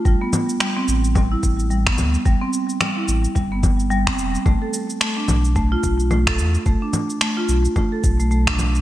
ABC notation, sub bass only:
X:1
M:4/4
L:1/8
Q:"Swing 16ths" 1/4=109
K:Am
V:1 name="Sub bass" clef=bass
A,,, z2 A,,,2 A,,,2 D,, | A,,, z2 A,,, G,,,3 E,,, | B,,, z2 B,,,2 B,,,2 E,, | B,,, z2 B,,, z B,,,3 |]